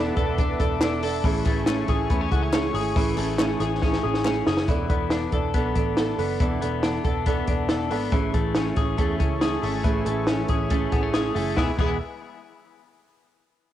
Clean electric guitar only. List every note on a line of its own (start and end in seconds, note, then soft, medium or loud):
0.00 1.25 E3 medium
0.00 1.29 B3 medium
0.00 0.38 D4 medium
0.00 0.17 A4 medium
0.17 0.60 A4 medium
0.39 0.80 D4 medium
0.60 1.03 A4 medium
0.82 1.29 D4 medium
1.03 1.89 A4 medium
1.25 2.96 E3 medium
1.47 3.17 A3 medium
1.68 2.10 C#4 medium
1.89 2.31 G#4 medium
2.10 2.21 B3 medium
2.21 2.52 C#4 medium
2.32 2.42 F#4 medium
2.42 2.73 G#4 medium
2.54 3.38 C#4 medium
2.75 3.59 G#4 medium
2.96 4.68 E3 medium
3.18 4.89 A3 medium
3.39 3.81 C#4 medium
3.60 4.02 G#4 medium
3.82 4.24 C#4 medium
4.04 4.46 G#4 medium
4.26 4.73 C#4 medium
4.47 4.73 G#4 medium
4.68 6.40 E3 medium
4.90 5.53 B3 medium
5.11 5.74 D4 medium
5.33 5.97 A4 medium
5.54 6.18 B3 medium
5.76 6.82 D4 soft
5.97 7.04 A4 medium
6.19 6.60 B3 medium
6.41 8.12 E3 medium
6.62 7.25 B3 medium
6.84 7.47 D4 medium
7.05 7.69 A4 medium
7.27 7.89 B3 medium
7.48 8.17 D4 medium
7.69 8.77 A4 medium
7.91 8.17 B3 medium
8.12 9.84 E3 medium
8.34 8.97 A3 medium
8.55 9.19 C#4 medium
8.77 9.41 G#4 medium
8.98 9.61 A3 medium
9.20 10.26 C#4 medium
9.41 10.49 G#4 medium
9.63 10.05 A3 medium
9.84 11.56 E3 medium
10.06 10.70 A3 medium
10.28 10.92 C#4 medium
10.50 11.13 G#4 medium
10.71 11.34 A3 medium
10.93 11.03 B3 medium
11.03 11.58 C#4 soft
11.14 11.58 G#4 medium
11.35 11.57 A3 medium
11.56 11.70 E3 medium
11.56 11.70 B3 medium
11.56 11.71 E4 loud
11.56 11.71 G#4 medium
11.78 11.96 E3 medium
11.78 11.96 B3 medium
11.78 11.97 E4 medium
11.78 11.97 G#4 medium